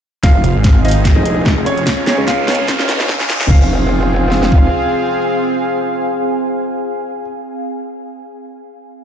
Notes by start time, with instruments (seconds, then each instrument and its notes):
0.23 wobble bass F1, ambient pad C4, supersaw synth C4 F4 G#4, grand piano F4 F5, kick, snare, closed hi-hat, riser
0.31 ambient pad G#4
0.44 detuned saw bass F1, brass ensemble F4 C5 F5, ambient pad G#5, closed hi-hat
0.55 detuned saw bass G#1
0.64 kick, snare, closed hi-hat
0.85 grand piano D#4 D#5, brass ensemble F4 C5 F5, closed hi-hat
0.88 closed hi-hat
0.91 closed hi-hat
0.98 ambient pad F5
1.05 kick, snare, closed hi-hat
1.16 wobble bass F1
1.25 closed hi-hat
1.46 kick, snare
1.57 detuned saw bass F1
1.66 grand piano C#4 C#5, closed hi-hat
1.77 closed hi-hat
1.87 ambient pad C#4, supersaw synth C#4 D#4, kick, snare, closed hi-hat
2.07 brass ensemble C#4 G#4 C#5, snare, closed hi-hat
2.18 wobble bass C#2
2.27 grand piano F4 F5, kick, snare, closed hi-hat
2.48 brass ensemble C#4 G#4 C#5, snare, closed hi-hat
2.52 closed hi-hat
2.55 closed hi-hat
2.68 kick, snare, closed hi-hat
2.79 wobble bass C#2, snare
2.89 snare, closed hi-hat
3.00 snare
3.09 kick, snare
3.20 detuned saw bass C#2, snare
3.30 snare, closed hi-hat
3.41 snare, closed hi-hat
3.50 wobble bass F1, ambient pad C4, supersaw synth C4 F4 G#4, brass ensemble F4 C5 F5, grand piano F5, kick, crash
3.57 ambient pad G#4
3.63 ambient pad F5
3.69 ambient pad G#5
4.32 snare
4.43 snare
4.52 kick